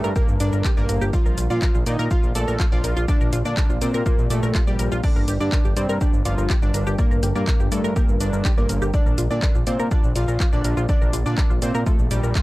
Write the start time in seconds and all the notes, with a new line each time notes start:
Already playing: G3 D4 A#4
0.04 G2 A#4, shaker
0.16 A#3 G4 A#4, kick, shaker
0.28 G1, shaker
0.40 G1 D4 D5, closed hi-hat, shaker
0.53 G1 A#4, shaker
0.65 G4, kick, clap, closed hi-hat, shaker
0.77 G1 A#3 A#4 D5, shaker
0.89 G1 A#4, closed hi-hat, shaker
1.01 G1 G4, shaker
1.13 A#3 F4 D5 F5, kick, shaker
1.26 A#1 A#4, shaker
1.38 A#1 F4, closed hi-hat, shaker
1.50 A#2 F4 D5 F5, shaker
1.62 A#4, kick, clap, shaker
1.75 A#1 F4, shaker
1.86 A#2 D#4 D5 D#5, closed hi-hat, shaker
1.99 A#2 A#4, shaker
2.11 F4 F5, kick, shaker
2.23 A#1, shaker
2.35 A#1 A4 D5 A5, closed hi-hat, shaker
2.48 A#1 A#4, shaker
2.60 F4, kick, clap, shaker
2.72 A#1 F4 D5 F5, shaker
2.84 A#1 A#4, closed hi-hat, shaker
2.97 A#1 F4, shaker
3.08 D4 G4 D5, kick, shaker
3.21 A#1 A#4, shaker
3.33 A#1 F4, closed hi-hat, shaker
3.45 A#2 D4 D5, shaker
3.57 A#4, kick, clap, shaker
3.70 A#1 F4, shaker
3.81 A#2 C4 C5 D5, closed hi-hat, shaker
3.94 A#2 A#4, shaker
4.06 A#3 F4 A#4, kick, shaker
4.19 A#1, shaker
4.30 A#1 A3 A4 D5, closed hi-hat, shaker
4.43 A#1 A#4, shaker
4.55 F4, kick, clap, closed hi-hat, shaker
4.67 A#1 G3 G4 D5, shaker
4.79 A#1 A#4, closed hi-hat, shaker
4.92 A#1 F4, shaker
5.03 G3 D4 A#4 D5, kick, crash, shaker
5.16 G1 A#4, shaker
5.28 G1 G4, closed hi-hat, shaker
5.40 G2 D4 D5, shaker
5.52 A#4, kick, clap, shaker
5.65 G1 G4, shaker
5.77 G2 C4 C5 D5, closed hi-hat, shaker
5.89 G2 A#4, shaker
6.01 D4 G4 D5, kick, shaker
6.14 G1, shaker
6.25 G1 F4 D5 F5, closed hi-hat, shaker
6.38 G1 A#4, shaker
6.50 G4, kick, clap, shaker
6.62 G1 D4 D5, shaker
6.74 G1 A#4, closed hi-hat, shaker
6.87 G1 G4, shaker
6.98 A#3 A#4 D5, kick, shaker
7.11 G1 A#4, shaker
7.23 G1 G4, closed hi-hat, shaker
7.35 G2 A#3 A#4 D5, shaker
7.47 A#4, kick, clap, shaker
7.60 G1 G4, shaker
7.72 G2 A3 A4 D5, closed hi-hat, shaker
7.84 G2 A#4, shaker
7.96 A#3 G4 A#4, kick, shaker
8.09 G1, shaker
8.20 G1 D4 D5, closed hi-hat, shaker
8.33 G1 A#4, shaker
8.45 G4, kick, clap, closed hi-hat, shaker
8.57 G1 A#3 A#4 D5, shaker
8.69 G1 A#4, closed hi-hat, shaker
8.82 G1 G4, shaker
8.94 A#3 D4 F4 D5, kick, shaker
9.06 A#1 A#4, shaker
9.18 A#1 F4, closed hi-hat, shaker
9.31 A#2 D4 D5, shaker
9.42 A#4, kick, clap, shaker
9.55 A#1 F4, shaker
9.67 A#2 C4 C5 D5, closed hi-hat, shaker
9.79 A#2 A#4, shaker
9.91 D4 F4 D5, kick, shaker
10.04 A#1, shaker
10.16 A#1 F4 D5 F5, closed hi-hat, shaker
10.28 A#1 A#4, shaker
10.40 F4, kick, clap, shaker
10.53 A#1 D4 D5, shaker
10.64 A#1 A#4, closed hi-hat, shaker
10.77 A#1 F4, shaker
10.89 D4 G4 D5, kick, shaker
11.01 A#1 A#4, shaker
11.13 A#1 F4, closed hi-hat, shaker
11.26 A#2 D4 D5, shaker
11.38 A#4, kick, clap, shaker
11.50 A#1 F4, shaker
11.62 A#2 C4 C5 D5, closed hi-hat, shaker
11.75 A#2 A#4, shaker
11.86 A3 F4 A4, kick, shaker
11.99 A#1, shaker
12.11 A#1 G3 G4 D5, closed hi-hat, shaker
12.23 A#1 A#4, shaker
12.35 F4, kick, clap, closed hi-hat, shaker